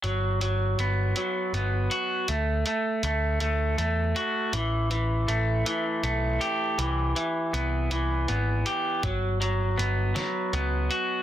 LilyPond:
<<
  \new Staff \with { instrumentName = "Clean electric guitar" } { \time 6/8 \key g \major \tempo 4. = 53 fis8 fis8 b8 fis8 b8 fis'8 | a8 a8 a8 a8 a8 fis'8 | e8 e8 a8 e8 a8 g'8 | e8 e8 b8 e8 b8 g'8 |
fis8 fis8 b8 fis8 b8 fis'8 | }
  \new Staff \with { instrumentName = "Picked electric bass" } { \clef bass \time 6/8 \key g \major g,,4 g,,8 r8 g,,8 r8 | d,8 r8 d,4 e,8 r8 | a,,4 a,,8 r8 b,,8 r8 | c,8 r8 c,4 aes,,8 r8 |
g,,4 g,,8 r8 cis,8 r8 | }
  \new DrumStaff \with { instrumentName = "Drums" } \drummode { \time 6/8 hh8 hh8 hh8 hh8 hh8 hh8 | hh8 hh8 hh8 hh8 hh8 hh8 | hh8 hh8 hh8 hh8 hh8 hh8 | hh8 hh8 hh8 hh8 hh8 hh8 |
<hh bd>8 hh8 hh8 <hh sn>8 hh8 hh8 | }
>>